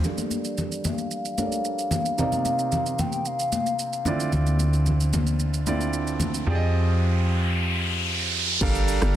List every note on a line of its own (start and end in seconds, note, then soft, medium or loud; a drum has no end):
0.04 1.35 G3 medium
0.04 1.35 D4 medium
0.04 1.36 A4 medium
0.04 1.36 A#4 medium
0.04 0.87 D5 medium
0.04 1.36 F5 medium
0.04 low conga medium
0.04 shaker medium
0.18 high conga medium
0.18 shaker medium
0.31 high conga medium
0.31 shaker medium
0.45 shaker medium
0.57 low conga medium
0.57 shaker medium
0.72 shaker soft
0.84 1.92 F5 loud
0.84 high conga medium
0.84 low conga medium
0.84 shaker medium
0.98 shaker soft
1.11 shaker medium
1.25 shaker medium
1.38 2.18 G3 soft
1.38 2.18 D4 soft
1.38 2.19 A4 soft
1.38 2.18 A#4 soft
1.38 1.45 C#5 soft
1.38 high conga medium
1.38 shaker medium
1.46 2.19 D5 medium
1.52 shaker medium
1.65 shaker medium
1.79 shaker soft
1.91 3.01 F5 loud
1.91 high conga medium
1.91 low conga medium
1.91 shaker medium
2.06 shaker medium
2.18 4.02 C3 medium
2.18 4.02 C4 medium
2.18 4.02 D#4 medium
2.18 4.03 A#4 medium
2.18 4.03 D5 medium
2.18 low conga medium
2.18 shaker medium
2.32 high conga medium
2.32 shaker medium
2.45 high conga medium
2.45 shaker medium
2.59 shaker medium
2.72 low conga medium
2.72 shaker medium
2.86 shaker soft
2.99 3.28 G5 loud
2.99 high conga medium
2.99 low conga medium
2.99 shaker medium
3.12 shaker soft
3.25 4.06 F5 loud
3.25 shaker medium
3.39 shaker medium
3.52 high conga medium
3.52 shaker loud
3.66 shaker medium
3.79 shaker medium
3.93 shaker soft
4.05 5.63 D3 medium
4.05 5.63 C4 medium
4.05 5.64 E4 medium
4.05 5.64 F4 medium
4.05 5.64 D5 medium
4.05 high conga medium
4.05 low conga medium
4.05 shaker medium
4.20 shaker medium
4.33 6.43 D2 medium
4.33 riser medium
4.33 low conga medium
4.33 shaker medium
4.46 high conga medium
4.46 shaker medium
4.59 high conga medium
4.59 shaker medium
4.73 shaker medium
4.86 low conga medium
4.86 shaker medium
5.00 shaker soft
5.13 high conga medium
5.13 low conga medium
5.13 shaker medium
5.27 shaker soft
5.40 shaker medium
5.54 shaker medium
5.67 6.47 D3 medium
5.67 6.46 C4 medium
5.67 6.47 E4 medium
5.67 6.47 F4 medium
5.67 6.47 D5 medium
5.67 high conga medium
5.67 shaker medium
5.81 shaker medium
5.93 shaker medium
6.07 shaker medium
6.20 high conga medium
6.20 low conga medium
6.20 shaker medium
6.34 shaker medium
6.47 8.57 F2 medium
6.47 8.57 F3 medium
6.47 8.57 C4 medium
6.47 8.57 G4 medium
6.47 8.58 G#4 medium
6.47 6.54 D5 medium
6.55 8.61 D#5 medium
8.61 8.99 G1 loud
8.61 9.16 G3 loud
8.61 9.16 D4 medium
8.61 9.16 A4 medium
8.61 9.16 A#4 medium
8.61 9.16 F5 loud
8.61 kick loud
8.61 crash loud
8.61 shaker medium
8.75 shaker medium
8.88 open hi-hat medium
8.88 shaker medium
9.02 9.16 G1 loud
9.02 cross-stick loud
9.02 shaker medium